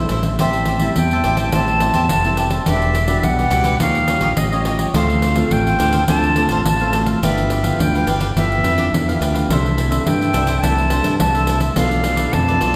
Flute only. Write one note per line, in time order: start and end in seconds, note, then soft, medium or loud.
0.40 0.93 E5 medium
0.96 1.55 G5 loud
1.53 2.09 A5 loud
2.10 2.50 A5 medium
2.67 3.26 E5 medium
3.24 3.81 F#5 medium
3.81 4.39 F5 medium
4.37 4.80 D#5 medium
4.95 5.54 F5 medium
5.52 6.08 G5 loud
6.09 6.61 A5 medium
6.66 6.97 A5 medium
7.23 7.81 E5 medium
7.80 8.08 G5 medium
8.36 9.18 E5 loud
9.49 10.08 E5 medium
10.06 10.63 G5 medium
10.62 11.19 A5 medium
11.20 11.60 A5 medium
11.76 12.35 F5 medium
12.33 12.76 A5 medium